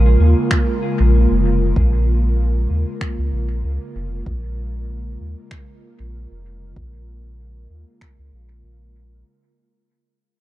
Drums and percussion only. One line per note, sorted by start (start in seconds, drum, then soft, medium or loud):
0.51 finger snap medium
0.51 kick medium
1.76 kick medium
3.01 finger snap medium
3.01 kick medium
4.26 kick medium
5.51 finger snap medium
5.51 kick medium
6.76 kick medium
8.01 finger snap medium
8.01 kick medium